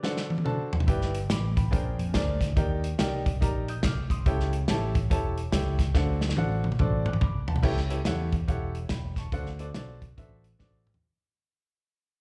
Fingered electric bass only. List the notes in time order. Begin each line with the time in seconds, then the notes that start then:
0.88 G1
1.30 A1
1.73 A#1
1.98 F2
2.15 D2
2.57 D#2
2.99 C2
3.42 A#1
3.84 C2
4.26 C#2
4.69 A1
5.11 E1
5.53 C#2
5.95 D2
6.37 A1
6.80 A1
7.22 C2
7.64 C#2
8.06 E2
8.49 E1
8.91 E1
9.32 D2
9.75 B1
10.18 A1
10.60 A1